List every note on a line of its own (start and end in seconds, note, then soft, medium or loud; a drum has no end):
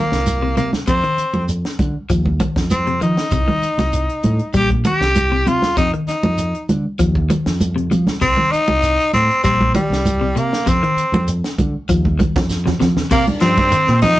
0.00 0.16 D#3 medium
0.00 0.54 A#3 medium
0.12 0.54 C2 medium
0.12 snare medium
0.26 closed hi-hat medium
0.26 high conga medium
0.26 shekere medium
0.42 0.52 C3 medium
0.57 0.72 C3 medium
0.57 0.78 C3 medium
0.57 0.71 A#3 medium
0.57 closed hi-hat soft
0.57 high conga medium
0.57 shekere soft
0.73 snare medium
0.73 high conga medium
0.87 1.02 F2 medium
0.87 0.98 C3 medium
0.87 1.45 C4 medium
0.87 kick medium
0.87 closed hi-hat medium
0.87 shekere medium
1.04 1.24 D#3 medium
1.04 closed hi-hat soft
1.18 muted fingered electric bass stroke soft
1.18 closed hi-hat soft
1.18 shekere soft
1.34 1.63 F2 medium
1.34 high conga medium
1.48 closed hi-hat medium
1.48 shekere medium
1.65 snare medium
1.65 closed hi-hat soft
1.79 1.94 D3 medium
1.79 kick medium
1.79 closed hi-hat soft
1.79 high conga medium
1.79 shekere soft
2.10 2.38 D#2 medium
2.10 2.30 F3 medium
2.10 kick medium
2.10 closed hi-hat medium
2.10 shekere medium
2.25 kick medium
2.25 high conga medium
2.40 2.61 D#3 medium
2.40 kick medium
2.40 closed hi-hat soft
2.40 high conga medium
2.40 shekere soft
2.56 2.98 F2 medium
2.56 kick medium
2.56 snare medium
2.56 closed hi-hat soft
2.70 3.00 C4 medium
2.70 closed hi-hat medium
2.70 high conga medium
2.70 shekere medium
2.87 2.97 C3 medium
2.87 closed hi-hat soft
3.01 3.22 D#3 medium
3.01 3.16 F3 medium
3.01 4.51 D#4 medium
3.01 closed hi-hat soft
3.01 shekere soft
3.17 snare medium
3.17 closed hi-hat soft
3.31 3.47 C2 medium
3.31 3.43 C3 medium
3.31 kick medium
3.31 closed hi-hat medium
3.31 shekere medium
3.48 3.68 D#3 medium
3.48 high conga medium
3.62 muted fingered electric bass stroke soft
3.62 closed hi-hat soft
3.62 shekere soft
3.78 4.07 C2 medium
3.78 snare soft
3.78 high conga medium
3.93 closed hi-hat medium
3.93 shekere medium
4.09 closed hi-hat soft
4.23 4.39 A2 medium
4.23 closed hi-hat soft
4.23 high conga medium
4.23 shekere soft
4.39 closed hi-hat soft
4.54 4.83 A#1 medium
4.54 4.74 G3 medium
4.54 4.70 G4 loud
4.54 kick medium
4.54 closed hi-hat medium
4.54 shekere medium
4.70 kick medium
4.70 closed hi-hat soft
4.84 5.05 D#3 medium
4.84 5.49 G4 medium
4.84 closed hi-hat soft
4.84 high conga medium
4.84 shekere soft
5.00 5.43 C2 medium
5.00 snare medium
5.15 closed hi-hat medium
5.15 high conga medium
5.15 shekere medium
5.32 5.42 C3 medium
5.46 5.61 C3 medium
5.46 5.67 C3 medium
5.46 5.77 F4 medium
5.46 closed hi-hat medium
5.46 high conga medium
5.46 shekere soft
5.62 snare medium
5.62 high conga medium
5.77 5.92 F2 medium
5.77 5.88 C3 medium
5.77 5.91 D#4 medium
5.77 kick medium
5.77 closed hi-hat medium
5.77 shekere medium
5.93 6.14 D#3 medium
5.93 closed hi-hat soft
6.07 6.65 D#4 medium
6.07 muted fingered electric bass stroke soft
6.07 snare soft
6.07 closed hi-hat medium
6.07 shekere soft
6.23 6.52 F2 medium
6.23 high conga medium
6.38 closed hi-hat medium
6.38 shekere medium
6.55 closed hi-hat soft
6.69 6.84 D3 medium
6.69 closed hi-hat soft
6.69 high conga medium
6.69 shekere soft
6.99 7.28 D#2 medium
6.99 7.20 F3 medium
6.99 kick medium
6.99 closed hi-hat medium
6.99 shekere medium
7.15 kick medium
7.30 7.50 D#3 medium
7.30 closed hi-hat soft
7.30 high conga medium
7.30 shekere soft
7.46 7.88 F2 medium
7.46 snare medium
7.46 closed hi-hat soft
7.61 closed hi-hat medium
7.61 high conga medium
7.61 shekere medium
7.76 7.86 C3 medium
7.76 closed hi-hat soft
7.91 8.12 C3 medium
7.91 8.06 F3 medium
7.91 closed hi-hat soft
7.91 high conga medium
7.91 shekere soft
8.07 snare medium
8.07 closed hi-hat soft
8.07 high conga medium
8.21 8.37 C2 medium
8.21 8.32 C3 medium
8.21 8.53 C4 loud
8.21 kick medium
8.21 closed hi-hat medium
8.21 shekere medium
8.37 8.57 D#3 medium
8.37 high conga medium
8.52 9.13 D#4 loud
8.52 muted fingered electric bass stroke soft
8.52 closed hi-hat soft
8.52 shekere soft
8.68 8.97 C2 medium
8.68 high conga medium
8.83 closed hi-hat medium
8.83 shekere medium
9.00 closed hi-hat soft
9.13 9.28 A2 medium
9.13 9.42 C4 medium
9.13 closed hi-hat soft
9.13 high conga medium
9.13 shekere soft
9.31 closed hi-hat soft
9.44 9.73 A#1 medium
9.44 9.64 G3 medium
9.44 9.73 C4 loud
9.44 kick medium
9.44 closed hi-hat medium
9.44 shekere medium
9.61 kick medium
9.61 closed hi-hat soft
9.61 high conga medium
9.74 9.95 D#3 medium
9.74 10.39 G3 medium
9.74 closed hi-hat soft
9.74 high conga medium
9.74 shekere soft
9.90 10.33 C2 medium
9.90 snare medium
10.06 closed hi-hat medium
10.06 high conga medium
10.06 shekere medium
10.21 10.31 C3 medium
10.36 10.56 C3 medium
10.36 10.51 C3 medium
10.36 10.70 A#3 medium
10.36 closed hi-hat soft
10.36 shekere soft
10.53 snare medium
10.66 10.82 F2 medium
10.66 10.77 C3 medium
10.66 11.29 C4 medium
10.66 kick medium
10.66 snare soft
10.66 closed hi-hat medium
10.66 shekere medium
10.83 11.03 D#3 medium
10.83 closed hi-hat soft
10.96 muted fingered electric bass stroke soft
10.96 closed hi-hat soft
10.96 shekere soft
11.12 11.41 F2 medium
11.12 high conga medium
11.28 closed hi-hat medium
11.28 shekere medium
11.44 snare medium
11.44 closed hi-hat soft
11.58 11.73 D3 medium
11.58 kick medium
11.58 closed hi-hat medium
11.58 high conga medium
11.58 shekere soft
11.89 12.18 D#2 medium
11.89 12.09 F3 medium
11.89 kick medium
11.89 closed hi-hat medium
11.89 shekere medium
12.05 kick medium
12.05 high conga medium
12.19 12.40 D#3 medium
12.19 kick medium
12.19 closed hi-hat soft
12.19 high conga loud
12.19 shekere soft
12.36 12.78 F2 medium
12.36 kick medium
12.36 snare medium
12.36 closed hi-hat soft
12.36 low conga loud
12.50 snare soft
12.50 shekere medium
12.66 12.75 C3 medium
12.66 snare medium
12.66 low conga medium
12.80 13.01 C3 medium
12.80 12.96 F3 medium
12.80 snare medium
12.80 low conga medium
12.80 shekere soft
12.97 snare medium
12.97 low conga medium
13.11 13.31 C3 medium
13.11 13.26 C3 medium
13.11 13.26 A#3 medium
13.11 13.27 A#3 medium
13.11 kick medium
13.11 snare soft
13.11 crash medium
13.11 shekere medium
13.27 13.75 D#3 medium
13.27 13.75 G3 medium
13.27 13.75 A#3 medium
13.27 13.76 D4 medium
13.27 closed hi-hat soft
13.27 high conga medium
13.41 13.70 G2 medium
13.41 13.62 F3 medium
13.41 13.99 C4 medium
13.41 14.00 C4 medium
13.41 snare medium
13.41 closed hi-hat soft
13.41 shekere soft
13.57 kick medium
13.57 snare soft
13.57 high conga medium
13.72 13.92 D#3 medium
13.72 closed hi-hat medium
13.72 shekere medium
13.87 14.02 A#2 loud
13.87 snare soft
14.01 14.20 F3 medium
14.01 14.20 D#4 loud
14.01 14.20 D#4 medium
14.01 open hi-hat medium
14.01 high conga medium
14.01 low conga medium
14.01 shekere soft